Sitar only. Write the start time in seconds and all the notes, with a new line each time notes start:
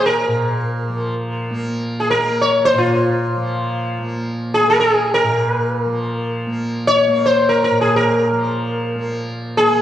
0.06 A#4
2.00 G#4
2.11 A#4
2.42 C#5
2.65 C5
2.78 F4
4.54 G#4
4.70 A#4
4.80 G#4
5.14 A#4
6.87 C#5
7.26 C5
7.49 A#4
7.64 A#4
7.81 G#4
7.96 A#4
9.57 G#4